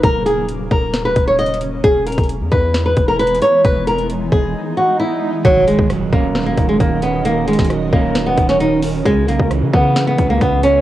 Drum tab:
HH |x-----------x-----------x-----------------------x-----------x-----------x---x---x---x-----------|x-----------x--x--x--x--x-----------------------x-----------x-----------x---x---x---x-----------|x-----------x-----x-----x-----------------------------------------------------------------------|x-----------x-----------x-----------------------x-----------x-----------x-----------x-----------|
SD |------------------------------------------------o-----------------------------------------------|------------------------------------------------o-----------------------------------------------|------------------------------------------------------------------------------------------------|------------------------r-----------------------o-----------------------------------------------|
BD |o-----------------------------------o-----------------------o-----------------------------------|o-----------------o-----------------o-----------------------o-----------------------------------|o-----------------------------------o-----------------------------------------------------------|o-----------------o-----------------o-----------------------o-----------o-----------------------|

HH |x-----------x--x--x--x--x-----------------------x-----------x-----------x-----------o-----------|x-----------x-----------x-----------------------x-----------x-----------x-----------x-----------|
SD |------------------o-----r-----------------------o-----------------o-----------------------------|------------------------r-----------------------o-----------------------------------------------|
BD |------------------o-----------------o-----------------------o-----------------------------------|o-----------------o-----------------o-----------------------o-----------o-----------------------|